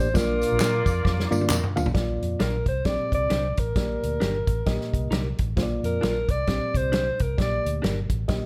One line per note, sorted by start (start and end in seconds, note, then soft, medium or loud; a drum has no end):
0.00 0.11 A1 medium
0.00 0.18 C5 medium
0.14 0.82 A#2 medium
0.14 0.70 A#3 medium
0.14 1.73 A#3 medium
0.14 0.70 D4 medium
0.14 0.70 F4 medium
0.14 1.73 F4 medium
0.14 1.51 A#4 loud
0.14 0.70 D5 medium
0.14 1.73 D5 medium
0.14 kick loud
0.14 snare loud
0.14 closed hi-hat medium
0.14 tambourine medium
0.42 closed hi-hat medium
0.42 tambourine soft
0.52 0.58 A#1 medium
0.59 0.81 A#2 loud
0.59 0.75 D4 medium
0.59 0.75 F4 medium
0.59 0.76 A#4 medium
0.59 snare loud
0.59 clap loud
0.59 closed hi-hat medium
0.59 tambourine loud
0.86 1.00 F2 loud
0.86 kick medium
0.86 closed hi-hat medium
0.86 tambourine medium
1.05 1.25 F2 medium
1.05 kick medium
1.05 snare medium
1.20 snare medium
1.31 1.45 G2 medium
1.31 1.55 A#3 loud
1.31 1.55 D4 medium
1.31 1.55 F4 medium
1.31 1.55 D5 loud
1.31 high tom medium
1.31 tambourine medium
1.41 high tom medium
1.49 1.60 F2 loud
1.49 1.65 D4 medium
1.49 1.65 F4 medium
1.49 1.66 A#4 loud
1.49 clap loud
1.49 mid tom medium
1.49 tambourine loud
1.64 mid tom medium
1.76 1.84 D2 medium
1.76 1.87 A#3 medium
1.76 1.87 D4 medium
1.76 1.87 F4 medium
1.76 1.87 F5 medium
1.76 floor tom loud
1.76 tambourine soft
1.86 1.93 A#1 loud
1.86 floor tom loud
1.94 2.15 A#1 medium
1.94 2.63 A#2 medium
1.94 2.50 A#3 medium
1.94 2.50 F4 medium
1.94 2.50 D5 medium
1.94 kick medium
1.94 snare medium
1.94 closed hi-hat medium
2.22 2.36 F2 medium
2.22 closed hi-hat soft
2.40 2.61 A#1 medium
2.40 2.55 D4 medium
2.40 2.56 F4 medium
2.40 2.66 A#4 medium
2.40 2.56 A#4 medium
2.40 snare loud
2.40 closed hi-hat medium
2.66 2.81 C2 medium
2.66 2.88 C5 medium
2.66 kick medium
2.66 closed hi-hat medium
2.85 2.96 A#1 medium
2.85 3.53 A#2 medium
2.85 3.41 C4 medium
2.85 3.41 G4 medium
2.85 3.41 D5 medium
2.85 3.13 D5 medium
2.85 kick medium
2.85 snare loud
2.85 closed hi-hat medium
3.00 muted fingered electric bass stroke soft
3.12 3.26 C2 medium
3.12 3.61 D5 loud
3.12 kick medium
3.12 closed hi-hat medium
3.30 3.51 C2 medium
3.30 3.46 D4 medium
3.30 3.46 G4 medium
3.30 3.47 C5 medium
3.30 snare medium
3.30 closed hi-hat medium
3.57 3.72 A1 medium
3.57 5.40 A#4 medium
3.57 kick medium
3.57 closed hi-hat medium
3.76 3.96 A#1 medium
3.76 4.44 A#2 medium
3.76 4.32 A#3 medium
3.76 4.32 G4 medium
3.76 4.32 D5 medium
3.76 kick loud
3.76 snare medium
3.76 closed hi-hat medium
4.03 4.17 D2 medium
4.03 closed hi-hat soft
4.20 4.42 G1 medium
4.20 4.36 D4 medium
4.20 4.37 G4 medium
4.20 4.37 A#4 medium
4.20 snare loud
4.20 closed hi-hat medium
4.47 4.62 A1 medium
4.47 kick medium
4.47 closed hi-hat medium
4.66 4.77 A#1 medium
4.66 5.34 A#2 medium
4.66 5.22 A#3 medium
4.66 5.22 G4 medium
4.66 5.22 D#5 medium
4.66 kick medium
4.66 snare loud
4.66 closed hi-hat medium
4.81 snare soft
4.93 5.08 C2 medium
4.93 kick medium
4.93 closed hi-hat medium
5.11 5.32 C2 medium
5.11 5.26 D#4 medium
5.11 5.27 G4 medium
5.11 5.28 A#4 medium
5.11 snare loud
5.11 closed hi-hat medium
5.38 5.53 A1 medium
5.38 kick medium
5.38 closed hi-hat medium
5.57 6.25 A#2 medium
5.57 6.13 A#3 medium
5.57 6.13 F4 medium
5.57 5.63 C5 medium
5.57 kick loud
5.57 snare medium
5.57 closed hi-hat medium
5.63 6.16 D5 medium
5.84 5.98 F2 medium
5.84 6.32 A#4 medium
5.84 closed hi-hat medium
6.01 6.23 A#1 medium
6.01 6.17 D4 medium
6.01 6.18 F4 medium
6.01 6.18 A#4 medium
6.01 snare loud
6.01 closed hi-hat medium
6.29 6.43 C2 medium
6.29 6.78 D5 loud
6.29 kick medium
6.29 closed hi-hat medium
6.47 6.58 A#1 medium
6.47 7.15 A#2 medium
6.47 7.03 C4 medium
6.47 7.03 G4 medium
6.47 7.03 D5 medium
6.47 kick medium
6.47 snare medium
6.47 closed hi-hat medium
6.61 muted fingered electric bass stroke soft
6.75 7.09 C2 medium
6.75 7.24 C5 medium
6.75 kick medium
6.75 closed hi-hat medium
6.92 7.08 D4 medium
6.92 7.08 G4 medium
6.92 7.09 C5 medium
6.92 snare loud
6.92 closed hi-hat medium
7.19 7.34 C2 medium
7.19 7.39 A#4 medium
7.19 kick medium
7.19 closed hi-hat medium
7.38 7.59 A#1 medium
7.38 8.06 A#2 medium
7.38 7.94 A#3 medium
7.38 7.94 G4 medium
7.38 7.94 D5 medium
7.38 7.82 D5 medium
7.38 kick medium
7.38 snare medium
7.38 closed hi-hat medium
7.65 7.79 D2 medium
7.65 closed hi-hat medium
7.82 8.04 G1 medium
7.82 7.98 D4 medium
7.82 7.98 G4 medium
7.82 7.99 A#4 medium
7.82 snare loud
7.82 closed hi-hat medium
8.10 8.24 A1 medium
8.10 kick medium
8.10 closed hi-hat medium
8.28 8.39 A#1 medium
8.28 8.46 A#2 medium
8.28 8.46 A#3 medium
8.28 8.46 G4 medium
8.28 8.46 D#5 medium
8.28 kick medium
8.28 snare loud
8.28 closed hi-hat medium
8.42 muted fingered electric bass stroke soft